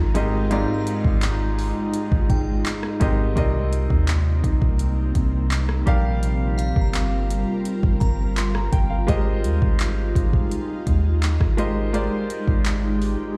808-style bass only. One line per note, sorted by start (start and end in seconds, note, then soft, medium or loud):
0.00 0.66 G#1 loud
1.05 1.73 G#1 loud
2.12 2.63 G#1 loud
3.01 3.35 G#1 loud
3.37 3.88 C2 loud
3.91 4.42 D#2 loud
4.44 5.12 C2 loud
5.15 5.84 C2 loud
5.87 6.73 A#1 loud
6.76 7.45 G1 loud
7.83 8.69 G1 loud
8.73 9.07 G1 loud
9.09 9.46 G#1 loud
9.44 9.61 D#2 loud
9.62 10.13 G#1 loud
10.16 10.50 G#1 loud
10.87 11.38 D#2 loud
11.41 12.09 G#1 loud
12.48 13.16 G#1 loud